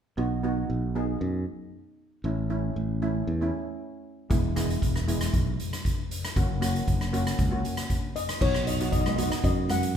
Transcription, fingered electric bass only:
0.18 B1
0.70 B1
1.21 F#2
2.24 A1
2.76 A1
3.27 E2
4.31 E1
4.82 E1
5.33 B1
6.36 F#1
6.88 F#1
7.39 C#2
8.41 B1
9.44 F#2

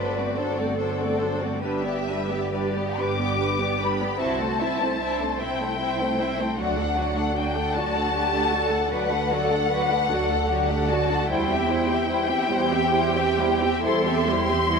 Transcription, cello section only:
Already playing: B4
0.39 A4
1.64 G4
4.20 F#4
4.61 E4
5.01 D4
5.40 E4
6.58 D4
7.75 F#4
8.14 G4
8.52 A4
8.90 B4
9.30 A4
9.70 B4
10.10 A4
10.49 G4
10.89 F#4
11.29 E4
12.48 G4
13.84 A4
14.27 G4
14.68 F#4

